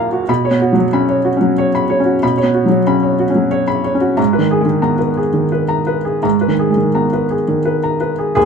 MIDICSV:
0, 0, Header, 1, 2, 480
1, 0, Start_track
1, 0, Tempo, 652174
1, 208, Time_signature, 3, 2, 24, 8
1, 3566, Tempo, 702576
1, 6030, End_track
2, 0, Start_track
2, 0, Title_t, "Felt piano"
2, 0, Program_c, 0, 0
2, 0, Control_c, 0, 64, 127
2, 0, Note_on_c, 0, 39, 63
2, 0, Note_on_c, 0, 46, 51
2, 0, Note_on_c, 0, 54, 52
2, 0, Note_on_c, 0, 58, 48
2, 0, Note_on_c, 0, 66, 49
2, 0, Note_on_c, 0, 77, 57
2, 0, Note_on_c, 0, 78, 42
2, 0, Note_on_c, 0, 82, 59
2, 0, Note_on_c, 0, 89, 41
2, 91, Note_off_c, 0, 66, 0
2, 91, Note_on_c, 0, 66, 47
2, 157, Note_off_c, 0, 77, 0
2, 173, Note_off_c, 0, 39, 0
2, 173, Note_off_c, 0, 78, 0
2, 193, Note_off_c, 0, 89, 0
2, 209, Note_on_c, 0, 47, 62
2, 210, Note_off_c, 0, 66, 0
2, 213, Note_on_c, 0, 83, 57
2, 222, Control_c, 0, 64, 0
2, 226, Note_off_c, 0, 58, 0
2, 226, Note_off_c, 0, 82, 0
2, 227, Note_off_c, 0, 54, 0
2, 230, Note_off_c, 0, 46, 0
2, 330, Note_on_c, 0, 73, 52
2, 353, Control_c, 0, 64, 127
2, 374, Note_on_c, 0, 59, 47
2, 402, Note_off_c, 0, 83, 0
2, 453, Note_on_c, 0, 66, 51
2, 519, Note_off_c, 0, 73, 0
2, 533, Note_on_c, 0, 54, 52
2, 557, Note_off_c, 0, 54, 0
2, 568, Note_on_c, 0, 54, 55
2, 623, Note_off_c, 0, 59, 0
2, 639, Note_off_c, 0, 66, 0
2, 685, Note_on_c, 0, 83, 53
2, 688, Note_on_c, 0, 61, 50
2, 755, Note_off_c, 0, 54, 0
2, 800, Note_on_c, 0, 73, 47
2, 874, Note_off_c, 0, 83, 0
2, 918, Note_on_c, 0, 66, 51
2, 939, Note_off_c, 0, 61, 0
2, 992, Note_off_c, 0, 73, 0
2, 1007, Note_on_c, 0, 61, 46
2, 1037, Note_on_c, 0, 54, 46
2, 1111, Note_off_c, 0, 66, 0
2, 1164, Note_on_c, 0, 73, 58
2, 1229, Note_off_c, 0, 54, 0
2, 1258, Note_off_c, 0, 61, 0
2, 1286, Note_on_c, 0, 83, 57
2, 1352, Note_off_c, 0, 73, 0
2, 1397, Note_on_c, 0, 73, 56
2, 1472, Note_off_c, 0, 83, 0
2, 1472, Note_on_c, 0, 61, 55
2, 1511, Note_on_c, 0, 66, 43
2, 1587, Note_off_c, 0, 73, 0
2, 1606, Note_off_c, 0, 47, 0
2, 1641, Note_on_c, 0, 47, 55
2, 1641, Note_on_c, 0, 83, 60
2, 1649, Control_c, 0, 64, 0
2, 1704, Note_off_c, 0, 66, 0
2, 1728, Note_off_c, 0, 61, 0
2, 1748, Note_on_c, 0, 73, 52
2, 1764, Control_c, 0, 64, 127
2, 1790, Note_on_c, 0, 59, 47
2, 1829, Note_off_c, 0, 83, 0
2, 1872, Note_on_c, 0, 66, 49
2, 1944, Note_off_c, 0, 73, 0
2, 1954, Note_on_c, 0, 54, 49
2, 1971, Note_off_c, 0, 54, 0
2, 1982, Note_on_c, 0, 54, 51
2, 2050, Note_off_c, 0, 59, 0
2, 2067, Note_off_c, 0, 66, 0
2, 2112, Note_on_c, 0, 83, 54
2, 2114, Note_on_c, 0, 61, 50
2, 2184, Note_off_c, 0, 54, 0
2, 2228, Note_on_c, 0, 73, 43
2, 2309, Note_off_c, 0, 83, 0
2, 2351, Note_on_c, 0, 66, 45
2, 2376, Note_off_c, 0, 61, 0
2, 2428, Note_off_c, 0, 73, 0
2, 2429, Note_on_c, 0, 61, 45
2, 2466, Note_on_c, 0, 54, 49
2, 2550, Note_off_c, 0, 66, 0
2, 2583, Note_on_c, 0, 73, 55
2, 2667, Note_off_c, 0, 54, 0
2, 2693, Note_off_c, 0, 61, 0
2, 2705, Note_on_c, 0, 83, 55
2, 2785, Note_off_c, 0, 73, 0
2, 2828, Note_on_c, 0, 73, 50
2, 2905, Note_off_c, 0, 83, 0
2, 2905, Note_on_c, 0, 61, 52
2, 2950, Note_on_c, 0, 66, 43
2, 3026, Note_off_c, 0, 73, 0
2, 3055, Note_off_c, 0, 47, 0
2, 3070, Note_on_c, 0, 44, 54
2, 3070, Note_on_c, 0, 82, 47
2, 3072, Note_off_c, 0, 61, 0
2, 3075, Note_off_c, 0, 66, 0
2, 3094, Control_c, 0, 64, 0
2, 3187, Note_on_c, 0, 71, 47
2, 3217, Control_c, 0, 64, 127
2, 3226, Note_on_c, 0, 51, 39
2, 3267, Note_off_c, 0, 82, 0
2, 3319, Note_on_c, 0, 68, 51
2, 3387, Note_off_c, 0, 71, 0
2, 3392, Note_on_c, 0, 56, 46
2, 3415, Note_off_c, 0, 51, 0
2, 3426, Note_on_c, 0, 51, 43
2, 3517, Note_off_c, 0, 68, 0
2, 3547, Note_on_c, 0, 59, 44
2, 3548, Note_on_c, 0, 82, 46
2, 3629, Note_off_c, 0, 51, 0
2, 3656, Note_off_c, 0, 56, 0
2, 3659, Note_on_c, 0, 71, 37
2, 3745, Note_off_c, 0, 82, 0
2, 3789, Note_on_c, 0, 68, 40
2, 3807, Note_off_c, 0, 59, 0
2, 3859, Note_off_c, 0, 71, 0
2, 3900, Note_on_c, 0, 51, 38
2, 3982, Note_off_c, 0, 68, 0
2, 4027, Note_on_c, 0, 71, 43
2, 4098, Note_off_c, 0, 51, 0
2, 4140, Note_on_c, 0, 82, 48
2, 4222, Note_off_c, 0, 71, 0
2, 4264, Note_on_c, 0, 71, 50
2, 4339, Note_off_c, 0, 82, 0
2, 4388, Note_on_c, 0, 68, 41
2, 4464, Note_off_c, 0, 71, 0
2, 4485, Note_off_c, 0, 44, 0
2, 4510, Note_on_c, 0, 44, 48
2, 4511, Note_on_c, 0, 82, 45
2, 4530, Control_c, 0, 64, 0
2, 4588, Note_off_c, 0, 68, 0
2, 4635, Note_on_c, 0, 71, 46
2, 4677, Control_c, 0, 64, 127
2, 4684, Note_on_c, 0, 51, 32
2, 4711, Note_off_c, 0, 82, 0
2, 4759, Note_on_c, 0, 68, 43
2, 4833, Note_on_c, 0, 56, 40
2, 4835, Note_off_c, 0, 71, 0
2, 4871, Note_off_c, 0, 51, 0
2, 4881, Note_on_c, 0, 51, 39
2, 4958, Note_off_c, 0, 68, 0
2, 5002, Note_on_c, 0, 82, 41
2, 5006, Note_on_c, 0, 59, 36
2, 5080, Note_off_c, 0, 51, 0
2, 5101, Note_off_c, 0, 56, 0
2, 5128, Note_on_c, 0, 71, 41
2, 5200, Note_off_c, 0, 82, 0
2, 5246, Note_on_c, 0, 68, 35
2, 5266, Note_off_c, 0, 59, 0
2, 5322, Note_off_c, 0, 71, 0
2, 5367, Note_on_c, 0, 51, 38
2, 5440, Note_off_c, 0, 68, 0
2, 5484, Note_on_c, 0, 71, 44
2, 5560, Note_off_c, 0, 51, 0
2, 5609, Note_on_c, 0, 82, 43
2, 5680, Note_off_c, 0, 71, 0
2, 5725, Note_on_c, 0, 71, 42
2, 5803, Note_off_c, 0, 82, 0
2, 5848, Note_on_c, 0, 68, 37
2, 5919, Note_off_c, 0, 71, 0
2, 5938, Note_off_c, 0, 44, 0
2, 5952, Note_off_c, 0, 68, 0
2, 5962, Note_on_c, 0, 68, 79
2, 5969, Note_on_c, 0, 39, 50
2, 5981, Control_c, 0, 64, 0
2, 6030, Note_off_c, 0, 39, 0
2, 6030, Note_off_c, 0, 68, 0
2, 6030, End_track
0, 0, End_of_file